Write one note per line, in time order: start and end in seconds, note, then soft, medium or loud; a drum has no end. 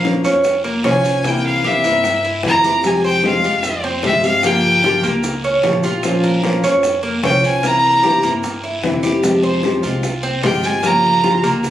0.00 0.18 A#1 loud
0.00 0.23 A#4 medium
0.04 0.24 F3 medium
0.04 0.24 A#3 medium
0.04 0.24 C#4 medium
0.04 0.24 F4 medium
0.04 0.23 C5 medium
0.04 high bongo medium
0.04 short guiro medium
0.04 maracas soft
0.24 0.80 F2 medium
0.24 0.63 C#4 medium
0.24 0.44 C#4 soft
0.24 0.44 F4 soft
0.24 0.44 C5 soft
0.24 short guiro medium
0.24 maracas medium
0.44 muted nylon-string guitar stroke medium
0.44 high bongo medium
0.44 long guiro medium
0.44 maracas loud
0.64 0.84 A#3 medium
0.64 maracas soft
0.83 1.78 C2 medium
0.83 1.03 F3 medium
0.83 1.04 A#3 medium
0.83 1.23 C#4 medium
0.83 1.04 C#4 medium
0.83 1.04 F4 medium
0.83 1.03 C5 medium
0.83 high bongo medium
0.83 low bongo medium
0.83 short guiro medium
0.83 maracas soft
0.88 1.29 G#5 medium
1.04 1.25 C#4 soft
1.04 1.24 F4 soft
1.04 1.23 C5 medium
1.04 short guiro medium
1.04 maracas medium
1.24 1.63 C3 medium
1.24 1.64 E3 medium
1.24 1.63 A#3 medium
1.24 1.64 A#3 medium
1.24 1.64 C4 medium
1.24 1.65 E4 medium
1.24 1.46 G5 medium
1.24 high bongo medium
1.24 long guiro medium
1.24 maracas medium
1.45 1.68 F5 medium
1.45 maracas soft
1.64 1.84 C3 medium
1.64 1.84 E3 medium
1.64 1.85 A#3 medium
1.64 1.85 C4 medium
1.64 1.83 E4 medium
1.64 1.84 G4 medium
1.64 2.25 E5 medium
1.64 high bongo medium
1.64 short guiro medium
1.64 maracas soft
1.84 2.40 G2 medium
1.84 2.23 A#3 medium
1.84 2.04 A#3 soft
1.84 2.04 C4 soft
1.84 2.04 E4 soft
1.84 high bongo soft
1.84 short guiro medium
1.84 maracas medium
2.04 muted nylon-string guitar stroke medium
2.04 high bongo medium
2.04 long guiro medium
2.04 maracas medium
2.24 2.63 E4 medium
2.24 high bongo soft
2.24 maracas soft
2.43 3.38 F2 medium
2.43 2.63 C3 medium
2.43 2.63 E3 medium
2.43 2.64 A#3 medium
2.43 2.64 C4 medium
2.43 2.63 E4 medium
2.43 2.88 A#5 loud
2.43 high bongo medium
2.43 low bongo medium
2.43 short guiro medium
2.43 maracas soft
2.64 2.84 A#3 soft
2.64 2.84 C4 soft
2.64 2.83 E4 soft
2.64 3.03 G4 medium
2.64 high bongo soft
2.64 short guiro medium
2.64 maracas medium
2.84 3.22 C3 medium
2.84 3.22 F3 medium
2.84 3.23 G#3 medium
2.84 3.23 C4 medium
2.84 3.24 G4 medium
2.84 3.05 G#5 medium
2.84 high bongo medium
2.84 long guiro medium
2.84 maracas medium
3.04 3.43 C5 medium
3.04 3.23 G5 medium
3.04 maracas soft
3.23 3.43 C3 medium
3.23 3.43 F3 medium
3.23 3.43 G#3 medium
3.23 3.43 C4 medium
3.23 3.42 G4 medium
3.23 3.81 F5 medium
3.23 high bongo medium
3.23 short guiro medium
3.23 maracas soft
3.43 4.00 F2 medium
3.43 3.64 G#3 soft
3.43 3.63 C4 soft
3.43 3.83 F4 medium
3.43 3.63 G4 soft
3.43 short guiro medium
3.43 maracas medium
3.63 muted nylon-string guitar stroke medium
3.63 high bongo medium
3.63 long guiro medium
3.63 maracas medium
3.83 4.03 C4 medium
3.83 maracas soft
4.03 4.98 G2 medium
4.03 4.23 C3 medium
4.03 4.23 F3 medium
4.03 4.23 G#3 medium
4.03 4.23 C4 medium
4.03 4.43 F4 medium
4.03 4.22 G4 medium
4.03 4.24 E5 medium
4.03 high bongo medium
4.03 low bongo medium
4.03 short guiro medium
4.03 maracas soft
4.23 4.44 G#3 soft
4.23 4.43 C4 soft
4.23 4.43 G4 medium
4.23 4.48 F5 medium
4.23 short guiro medium
4.23 maracas medium
4.43 4.82 C#3 medium
4.43 4.83 F3 medium
4.43 4.83 A#3 medium
4.43 4.83 F4 medium
4.43 4.84 G4 medium
4.43 5.05 G5 medium
4.43 high bongo medium
4.43 long guiro medium
4.43 maracas medium
4.64 maracas soft
4.83 5.03 C#3 medium
4.83 5.03 F3 medium
4.83 5.03 A#3 medium
4.83 5.03 F4 medium
4.83 5.03 G4 medium
4.83 high bongo medium
4.83 short guiro medium
4.83 maracas soft
5.03 5.60 C#2 medium
5.03 5.42 A#3 medium
5.03 5.22 A#3 soft
5.03 5.23 F4 soft
5.03 5.23 G4 soft
5.03 high bongo soft
5.03 short guiro medium
5.03 maracas medium
5.23 muted nylon-string guitar stroke medium
5.23 high bongo medium
5.23 long guiro medium
5.23 maracas medium
5.44 5.83 C#4 medium
5.44 high bongo soft
5.44 maracas soft
5.63 6.58 A#1 medium
5.63 5.83 C#3 medium
5.63 5.83 F3 medium
5.63 5.83 A#3 medium
5.63 5.83 F4 medium
5.63 5.82 G4 medium
5.63 high bongo medium
5.63 low bongo medium
5.63 short guiro medium
5.63 maracas soft
5.83 6.03 A#3 soft
5.83 6.22 F4 medium
5.83 6.03 F4 soft
5.83 6.03 G4 soft
5.83 high bongo soft
5.83 short guiro medium
5.83 maracas medium
6.03 6.41 F3 medium
6.03 6.42 A#3 medium
6.03 6.43 C#4 medium
6.03 6.43 F4 medium
6.03 6.43 C5 medium
6.03 high bongo medium
6.03 long guiro medium
6.03 maracas medium
6.24 6.62 A#4 medium
6.24 maracas soft
6.43 6.62 F3 medium
6.43 6.63 A#3 medium
6.43 6.63 C#4 medium
6.43 6.63 F4 medium
6.43 6.62 C5 medium
6.43 high bongo medium
6.43 short guiro medium
6.43 maracas soft
6.63 7.20 F2 medium
6.63 7.02 C#4 medium
6.63 6.84 C#4 soft
6.63 6.83 F4 soft
6.63 6.83 C5 medium
6.63 short guiro medium
6.63 maracas medium
6.83 muted nylon-string guitar stroke medium
6.83 high bongo medium
6.83 long guiro medium
6.83 maracas loud
7.03 7.23 A#3 medium
7.03 maracas soft
7.23 8.17 C2 medium
7.23 7.42 F3 medium
7.23 7.43 A#3 medium
7.23 7.62 C#4 medium
7.23 7.43 C#4 medium
7.23 7.43 F4 medium
7.23 7.42 C5 medium
7.23 7.43 G5 medium
7.23 high bongo medium
7.23 low bongo medium
7.23 short guiro medium
7.23 maracas soft
7.43 7.64 C#4 soft
7.43 7.63 F4 soft
7.43 7.63 C5 medium
7.43 7.68 G#5 medium
7.43 short guiro medium
7.43 maracas medium
7.63 8.01 C3 medium
7.63 8.02 E3 medium
7.63 8.02 A#3 medium
7.63 8.03 A#3 medium
7.63 8.03 C4 medium
7.63 8.03 E4 medium
7.63 8.25 A#5 loud
7.63 high bongo medium
7.63 long guiro medium
7.63 maracas medium
7.84 maracas soft
8.03 8.22 C3 medium
8.03 8.23 E3 medium
8.03 8.23 A#3 medium
8.03 8.23 C4 medium
8.03 8.22 E4 medium
8.03 8.23 G4 medium
8.03 high bongo medium
8.03 short guiro medium
8.03 maracas soft
8.23 8.79 G2 medium
8.23 8.62 A#3 medium
8.23 8.43 A#3 soft
8.23 8.43 C4 soft
8.23 8.43 E4 soft
8.23 high bongo soft
8.23 short guiro medium
8.23 maracas medium
8.43 muted nylon-string guitar stroke medium
8.43 high bongo medium
8.43 long guiro medium
8.43 maracas loud
8.63 9.02 E4 medium
8.63 high bongo soft
8.63 maracas soft
8.83 9.77 F2 medium
8.83 9.02 C3 medium
8.83 9.03 E3 medium
8.83 9.03 A#3 medium
8.83 9.03 C4 medium
8.83 9.02 E4 medium
8.83 high bongo medium
8.83 low bongo medium
8.83 short guiro medium
8.83 maracas soft
9.03 9.23 A#3 soft
9.03 9.23 C4 soft
9.03 9.22 E4 soft
9.03 9.42 G4 medium
9.03 high bongo soft
9.03 short guiro medium
9.03 maracas medium
9.23 9.62 C3 medium
9.23 9.63 F3 medium
9.23 9.63 G#3 medium
9.23 9.63 C4 medium
9.23 9.63 G4 medium
9.23 high bongo medium
9.23 long guiro medium
9.23 maracas medium
9.43 9.82 C5 medium
9.43 maracas soft
9.63 9.83 C3 medium
9.63 9.83 F3 medium
9.63 9.83 G#3 medium
9.63 9.83 C4 medium
9.63 9.83 G4 medium
9.63 high bongo medium
9.63 short guiro medium
9.63 maracas soft
9.83 10.39 C2 medium
9.83 10.03 G#3 soft
9.83 10.03 C4 soft
9.83 10.22 F4 medium
9.83 10.03 G4 medium
9.83 short guiro medium
9.83 maracas medium
10.03 muted nylon-string guitar stroke medium
10.03 high bongo medium
10.03 long guiro medium
10.03 maracas medium
10.23 10.43 C4 medium
10.23 maracas soft
10.42 11.38 G1 loud
10.42 10.62 C3 medium
10.42 10.63 F3 medium
10.42 10.63 G#3 medium
10.42 10.63 C4 medium
10.42 10.82 F4 medium
10.42 10.62 G4 medium
10.42 10.67 G5 medium
10.42 high bongo medium
10.42 low bongo medium
10.42 short guiro medium
10.42 maracas soft
10.63 10.83 G#3 soft
10.63 10.83 C4 soft
10.63 10.83 G4 soft
10.63 10.87 G#5 medium
10.63 short guiro medium
10.63 maracas medium
10.82 11.21 C#3 medium
10.82 11.22 F3 medium
10.82 11.22 A#3 medium
10.82 11.23 F4 medium
10.82 11.23 G4 medium
10.82 11.45 A#5 medium
10.82 high bongo medium
10.82 long guiro medium
10.82 maracas medium
11.04 maracas soft
11.22 11.42 C#3 medium
11.22 11.43 F3 medium
11.22 11.43 A#3 medium
11.22 11.43 F4 medium
11.22 11.42 F4 medium
11.22 11.41 G4 medium
11.22 high bongo medium
11.22 short guiro medium
11.22 maracas soft
11.42 11.70 C#2 medium
11.42 11.70 A#3 medium
11.42 11.62 A#3 soft
11.42 11.62 F4 soft
11.42 11.62 G4 soft
11.42 high bongo soft
11.42 short guiro medium
11.42 maracas medium
11.62 muted nylon-string guitar stroke medium
11.62 high bongo medium
11.62 long guiro medium
11.62 maracas medium